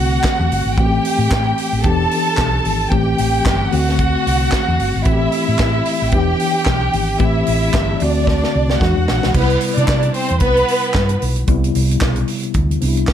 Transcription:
Already playing: C2 D3 A3 C4 F#4 F#5
0.24 kick, snare, clap, closed hi-hat
0.40 E2
0.52 G1, open hi-hat
0.65 G#1
0.77 A1 E3 A3 C4 F#4 G4 G5, kick, closed hi-hat
0.87 G4
1.05 open hi-hat
1.18 A2
1.31 A2, kick, snare, clap
1.58 open hi-hat
1.73 A1
1.83 E1 E3 B3 D4 G4 A4 A5, kick, closed hi-hat
2.11 open hi-hat
2.37 B1, kick, snare, clap
2.65 G#1, open hi-hat
2.90 A1 E3 A3 C4 G4 G5, kick, closed hi-hat
3.18 A1, open hi-hat
3.46 G1, kick, snare, clap
3.71 D2 D3 A3 C4 F#4 F#5, open hi-hat
3.89 snare
3.99 kick, closed hi-hat
4.27 C2, open hi-hat
4.52 kick, snare, clap, closed hi-hat
4.68 E2
4.79 G1, open hi-hat
4.96 G#1
5.04 A1 E3 A3 C4 E4 F#4 E5, kick, closed hi-hat
5.13 G4
5.32 open hi-hat
5.48 A2
5.58 A2, kick, snare, clap, closed hi-hat
5.85 open hi-hat
6.02 A1
6.12 E1 E3 B3 D4 G4 G5, kick, closed hi-hat
6.40 open hi-hat
6.66 B1, kick, snare, clap
6.93 G#1, open hi-hat
7.19 A1 E3 A3 C4 E4 G4 E5, kick, closed hi-hat
7.47 A1, open hi-hat
7.74 G1, kick, snare, clap
8.00 D2 D3 A3 C4 D4 F#4 D5, open hi-hat
8.27 kick, snare
8.44 snare
8.55 C2
8.70 snare
8.80 E2 E3 G#3 D4 F#4 F#5, kick, snare
8.97 E2
9.08 A#1, snare
9.23 B1, snare
9.34 C2 C3 G3 B3 E4 B4, kick, crash
9.50 closed hi-hat
9.61 open hi-hat
9.77 C3 D4 D5, closed hi-hat
9.88 C3, kick, snare, clap
10.03 closed hi-hat
10.14 C4 C5, open hi-hat
10.28 E2, closed hi-hat
10.40 C2 B3 B4, kick, closed hi-hat
10.57 closed hi-hat
10.68 open hi-hat
10.83 closed hi-hat
10.94 G2, kick, snare, clap
11.09 closed hi-hat
11.22 B1, open hi-hat
11.36 closed hi-hat
11.47 C2 C3 G3 B3 E4, kick, closed hi-hat
11.64 closed hi-hat
11.75 C2, open hi-hat
11.91 closed hi-hat
12.01 B1, kick, snare, clap
12.16 closed hi-hat
12.28 open hi-hat
12.43 closed hi-hat
12.54 D2, kick, closed hi-hat
12.71 closed hi-hat
12.81 C2 C3 G3 B3 D4, open hi-hat
12.88 E4
12.97 closed hi-hat
13.07 kick, snare, clap

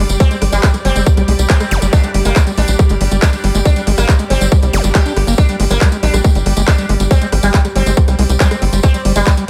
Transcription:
Already playing: G3 G4 D5 D6
0.09 G1 G3, closed hi-hat, tambourine
0.20 G3 C4, kick, closed hi-hat, tambourine
0.31 G#3, closed hi-hat, tambourine
0.42 G#1 G3, cross-stick, open hi-hat
0.52 G#1 G3, closed hi-hat, tambourine
0.63 G#3, kick, clap, closed hi-hat, tambourine
0.74 G3, cross-stick, closed hi-hat, tambourine
0.85 G1 G3 C4, open hi-hat
0.96 G1 G#3, closed hi-hat, tambourine
1.06 G3, kick, closed hi-hat, tambourine
1.17 C2 G3, cross-stick, closed hi-hat, tambourine
1.28 C2 G#3, open hi-hat
1.39 C2 G3, closed hi-hat, tambourine
1.49 G3 C4, kick, clap, closed hi-hat, tambourine
1.60 G#3, cross-stick, closed hi-hat, tambourine
1.71 G1 G3, open hi-hat, zap
1.82 G1 G3, closed hi-hat, tambourine
1.93 G#3 D4, kick, cross-stick, closed hi-hat, tambourine
2.04 G3, closed hi-hat, tambourine
2.14 G1 G3, open hi-hat
2.25 G1 G#3 A#3, closed hi-hat, tambourine
2.36 G3, kick, cross-stick, clap, closed hi-hat, tambourine
2.47 G3, closed hi-hat, tambourine
2.58 A#1 G#3 D4, open hi-hat
2.68 A#1 G3, closed hi-hat, tambourine
2.79 G3, kick, cross-stick, closed hi-hat, tambourine
2.89 G1 G#3, closed hi-hat, tambourine
3.01 G1 G3, open hi-hat
3.11 G1 G3, cross-stick, closed hi-hat, tambourine
3.22 G#3 D4, kick, clap, closed hi-hat, tambourine
3.33 G3, closed hi-hat, tambourine
3.44 G1 G3, open hi-hat
3.55 G1 G#3, cross-stick, closed hi-hat, tambourine
3.65 G3 D4, kick, closed hi-hat, tambourine
3.76 G3, closed hi-hat, tambourine
3.87 G#1 G#3, open hi-hat
3.98 G#1 G3 A#3, cross-stick, closed hi-hat, tambourine
4.09 G3, kick, clap, closed hi-hat, tambourine
4.19 G#3, closed hi-hat, tambourine
4.30 G1 G3 C4, cross-stick, open hi-hat
4.41 G1 G3, closed hi-hat, tambourine
4.52 G#3, kick, closed hi-hat, tambourine
4.63 C2 G3, closed hi-hat, tambourine
4.73 G1 G3, cross-stick, open hi-hat, zap
4.84 G1 G3, closed hi-hat, tambourine
4.95 G3 G4, kick, clap, closed hi-hat, tambourine
5.06 D4, closed hi-hat, tambourine
5.17 G1, cross-stick, open hi-hat
5.27 G1 A#3, closed hi-hat, tambourine
5.38 G3 D4, kick, closed hi-hat, tambourine
5.49 G3, closed hi-hat, tambourine
5.60 G1 G#3, open hi-hat
5.70 G1 G3 A#3, cross-stick, closed hi-hat, tambourine
5.81 G3, kick, clap, closed hi-hat, tambourine
5.92 G#3, closed hi-hat, tambourine
6.03 A#1 G3 D4, open hi-hat
6.14 A#1 G3, cross-stick, closed hi-hat, tambourine
6.24 G#3, kick, closed hi-hat, tambourine
6.35 G1 G3, closed hi-hat, tambourine
6.46 G1 G3, cross-stick, open hi-hat
6.57 G1 G#3, closed hi-hat, tambourine
6.68 G3 D4, kick, clap, closed hi-hat, tambourine
6.78 G3, closed hi-hat, tambourine
6.89 G1 G#3, cross-stick, open hi-hat
7.00 G1 G3, closed hi-hat, tambourine
7.11 G3 C4, kick, closed hi-hat, tambourine
7.21 G#3, closed hi-hat, tambourine
7.32 G#1 G3, cross-stick, open hi-hat
7.43 G#1 G3, closed hi-hat, tambourine
7.54 G#3, kick, clap, closed hi-hat, tambourine
7.65 G3, cross-stick, closed hi-hat, tambourine
7.76 G1 G3 C4, open hi-hat
7.86 G1 G#3, closed hi-hat, tambourine
7.97 G3, kick, closed hi-hat, tambourine
8.08 C2 G3, cross-stick, closed hi-hat, tambourine
8.19 C2 G#3, open hi-hat
8.29 C2 G3, closed hi-hat, tambourine
8.40 G3 C4, kick, clap, closed hi-hat, tambourine
8.51 G#3, cross-stick, closed hi-hat, tambourine
8.62 G1 G3, open hi-hat
8.73 G1 G3, closed hi-hat, tambourine
8.83 G#3 C4, kick, cross-stick, closed hi-hat, tambourine
8.94 G3, closed hi-hat, tambourine
9.05 G1 G3, open hi-hat
9.16 G1 G3 G#3, closed hi-hat, tambourine
9.27 G3, kick, cross-stick, clap, closed hi-hat, tambourine
9.37 G3, closed hi-hat, tambourine

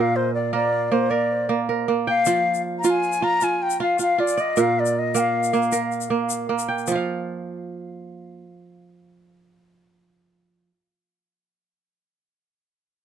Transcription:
Already playing: A#2 F4 A#4 D5
0.01 F5
0.16 C5
0.34 D5
0.53 A#3 A#4 D5
0.92 A#3 C5
1.10 A#4 D5
1.49 A#3
1.69 A#4
1.88 A#3
2.07 F5 G5
2.25 F3 F4, shaker
2.54 shaker
2.79 A#5
2.84 F4 A#5, shaker
2.90 G#5
3.03 shaker
3.12 shaker
3.22 F4 A#5
3.41 F4 G#5, shaker
3.62 G5
3.70 shaker
3.80 F4 F5
3.99 F4 F5, shaker
4.18 F4 D5
4.28 shaker
4.37 D5 D#5, shaker
4.57 A#2 A#4 F5, shaker
4.80 D5
4.86 shaker
4.99 D#5
5.14 A#3 A#4 G5, shaker
5.20 F5
5.43 shaker
5.53 A#3, shaker
5.62 shaker
5.72 A#4, shaker
5.92 shaker
6.01 shaker
6.10 A#3
6.30 shaker
6.49 A#3
6.59 shaker
6.68 G5
6.78 shaker
6.87 F3, shaker
6.91 F4
6.95 F5

